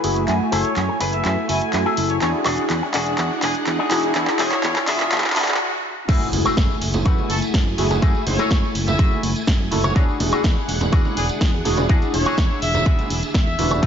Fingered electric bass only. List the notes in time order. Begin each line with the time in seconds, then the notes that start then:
0.04 F#1
0.28 F#2
0.41 muted fingered electric bass stroke
0.52 F#1
0.65 muted fingered electric bass stroke
0.76 F#2
1.01 F#1
1.25 F#2
1.37 muted fingered electric bass stroke
1.49 F#1
1.62 muted fingered electric bass stroke
1.73 F#2
1.97 F#1
2.22 E2
2.46 E1
2.58 muted fingered electric bass stroke
2.70 E2
2.94 E1
3.18 E2
3.42 E1
3.55 muted fingered electric bass stroke
3.67 E2
3.91 E1
4.15 E2
4.28 muted fingered electric bass stroke
4.39 E1
4.64 E2
4.88 E1
5.12 E2
5.36 E1
5.49 muted fingered electric bass stroke
6.09 F#2
6.33 F#1
6.46 muted fingered electric bass stroke
6.57 F#2
6.81 F#1
7.06 F#2
7.18 muted fingered electric bass stroke
7.30 F#1
7.42 muted fingered electric bass stroke
7.54 F#2
7.78 F#1
8.02 F#2
8.15 muted fingered electric bass stroke
8.27 F#1
8.39 muted fingered electric bass stroke
8.51 F#2
8.75 F#1
8.99 F#2
9.23 F#1
9.36 muted fingered electric bass stroke
9.47 F#2
9.72 F#1
9.96 E2
10.20 E1
10.33 muted fingered electric bass stroke
10.44 E2
10.68 E1
10.93 E2
11.05 muted fingered electric bass stroke
11.17 E1
11.29 muted fingered electric bass stroke
11.41 E2
11.65 E1
11.89 E2
12.02 muted fingered electric bass stroke
12.14 E1
12.26 muted fingered electric bass stroke
12.38 E2
12.62 E1
12.86 E2
12.99 muted fingered electric bass stroke
13.10 E1
13.23 muted fingered electric bass stroke
13.34 E2
13.59 E1
13.83 F#2